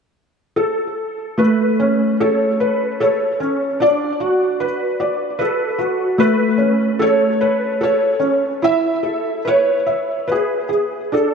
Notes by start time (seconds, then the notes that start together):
0.56 A4
1.38 A3 B4
1.80 C#4
2.20 A4 C#5
2.60 B4
3.00 A4 C#5
3.40 C#4
3.80 D4 D5
4.20 F#4
4.60 B4
5.00 D5
5.39 A4 B4
5.78 F#4
6.18 A3 B4
6.58 C#4
6.99 A4 C#5
7.41 B4
7.81 A4 C#5
8.20 C#4
8.62 E4 E5
9.03 A4
9.45 B4 C#5
9.86 E5
10.28 B4
10.32 G#4
10.69 G#4
11.12 D4 A4